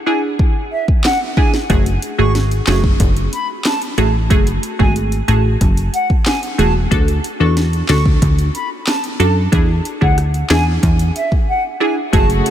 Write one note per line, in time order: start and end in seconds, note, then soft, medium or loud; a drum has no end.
0.06 0.37 D4 medium
0.06 0.37 E4 medium
0.06 0.37 G#4 medium
0.06 0.20 G#5 medium
0.39 kick medium
0.72 0.85 E5 medium
0.88 kick medium
1.04 1.18 F#5 medium
1.04 cross-stick medium
1.04 snare loud
1.04 clap medium
1.37 1.55 D4 medium
1.37 1.55 E4 medium
1.37 1.55 G#4 medium
1.37 1.51 G#5 medium
1.37 kick loud
1.54 snare medium
1.70 1.98 F#1 loud
1.70 1.88 A3 medium
1.70 1.88 F#4 medium
1.70 1.88 G#4 loud
1.70 kick loud
1.70 closed hi-hat medium
1.86 closed hi-hat medium
2.02 closed hi-hat medium
2.18 2.61 G#1 medium
2.18 2.63 A3 medium
2.18 2.64 F#4 medium
2.18 2.64 G#4 medium
2.18 2.32 C#6 medium
2.35 snare medium
2.35 closed hi-hat medium
2.51 closed hi-hat medium
2.67 2.96 F#1 loud
2.67 2.97 A3 medium
2.67 2.98 F#4 medium
2.67 2.98 G#4 medium
2.67 2.81 C#6 medium
2.67 snare loud
2.67 clap medium
2.67 closed hi-hat medium
2.84 kick loud
3.00 3.28 F#1 loud
3.00 kick medium
3.00 closed hi-hat medium
3.17 closed hi-hat medium
3.33 3.47 B5 medium
3.33 closed hi-hat medium
3.65 3.79 A5 medium
3.65 cross-stick medium
3.65 snare loud
3.65 clap medium
3.65 closed hi-hat medium
3.82 closed hi-hat medium
3.98 4.32 A1 medium
3.98 4.16 A3 medium
3.98 4.16 F#4 medium
3.98 4.16 G#4 medium
3.98 4.12 A5 medium
3.98 closed hi-hat medium
4.30 4.59 F#1 loud
4.30 4.48 A3 medium
4.30 4.49 F#4 medium
4.30 4.49 G#4 loud
4.30 kick loud
4.30 closed hi-hat medium
4.47 closed hi-hat medium
4.63 closed hi-hat medium
4.79 5.22 G#1 medium
4.79 5.24 A3 medium
4.79 5.24 F#4 medium
4.79 5.25 G#4 medium
4.79 4.93 G#5 medium
4.79 kick medium
4.96 closed hi-hat medium
5.12 closed hi-hat medium
5.28 5.56 A1 loud
5.28 5.58 A3 medium
5.28 5.58 F#4 medium
5.28 5.58 G#4 medium
5.28 5.42 A5 medium
5.28 closed hi-hat medium
5.61 5.89 F#1 loud
5.61 kick loud
5.61 closed hi-hat medium
5.77 closed hi-hat medium
5.94 6.07 F#5 medium
5.94 closed hi-hat medium
6.10 kick medium
6.26 6.40 G#5 medium
6.26 cross-stick medium
6.26 snare loud
6.26 clap medium
6.26 closed hi-hat medium
6.43 closed hi-hat medium
6.58 6.87 E1 medium
6.58 6.77 A3 medium
6.58 6.77 F#4 medium
6.58 6.77 G#4 medium
6.58 6.73 A5 medium
6.58 closed hi-hat medium
6.91 7.20 D2 loud
6.91 7.09 D4 medium
6.91 7.09 F#4 medium
6.91 7.10 A4 loud
6.91 kick loud
6.91 closed hi-hat medium
7.08 closed hi-hat medium
7.24 closed hi-hat medium
7.40 7.83 E2 medium
7.40 7.85 D4 medium
7.40 7.85 F#4 medium
7.40 7.86 A4 medium
7.40 7.54 C#6 medium
7.57 snare medium
7.57 closed hi-hat medium
7.73 closed hi-hat medium
7.89 8.17 D2 loud
7.89 8.19 D4 medium
7.89 8.19 F#4 medium
7.89 8.19 A4 medium
7.89 8.03 C#6 medium
7.89 snare loud
7.89 clap medium
7.89 closed hi-hat medium
8.06 kick loud
8.22 8.50 D2 loud
8.22 kick medium
8.22 closed hi-hat medium
8.39 closed hi-hat medium
8.55 8.68 B5 medium
8.55 closed hi-hat medium
8.87 9.01 A5 medium
8.87 cross-stick medium
8.87 snare loud
8.87 clap medium
8.87 closed hi-hat medium
9.04 closed hi-hat medium
9.20 9.48 F#2 medium
9.20 9.38 D4 medium
9.20 9.38 F#4 medium
9.20 9.38 A4 medium
9.20 9.33 A5 medium
9.20 closed hi-hat medium
9.52 9.81 E2 loud
9.52 9.70 D4 medium
9.52 9.70 E4 medium
9.52 9.71 G#4 loud
9.52 kick loud
9.52 closed hi-hat medium
9.85 closed hi-hat medium
10.01 10.44 D2 medium
10.01 10.46 D4 medium
10.01 10.46 E4 medium
10.01 10.46 G#4 medium
10.01 10.15 F#5 medium
10.01 kick medium
10.18 cross-stick medium
10.18 closed hi-hat medium
10.34 closed hi-hat medium
10.50 10.78 E2 medium
10.50 10.80 D4 medium
10.50 10.80 E4 medium
10.50 10.80 G#4 medium
10.50 10.64 G#5 medium
10.50 snare loud
10.50 clap medium
10.50 closed hi-hat medium
10.83 11.11 E2 loud
10.83 kick medium
10.83 closed hi-hat medium
10.99 closed hi-hat medium
11.16 11.29 E5 medium
11.16 closed hi-hat medium
11.32 kick medium
11.49 11.62 F#5 medium
11.80 11.98 D4 medium
11.80 11.99 E4 medium
11.80 11.99 G#4 medium
11.80 11.95 G#5 medium
12.13 12.41 F#1 loud
12.13 12.50 C#3 medium
12.13 12.31 A3 medium
12.13 12.50 A3 medium
12.13 12.31 F#4 medium
12.13 12.50 F#4 medium
12.13 12.31 G#4 loud
12.13 12.50 G#4 medium
12.13 12.27 A5 loud
12.13 kick loud
12.13 closed hi-hat medium
12.30 closed hi-hat medium
12.46 closed hi-hat medium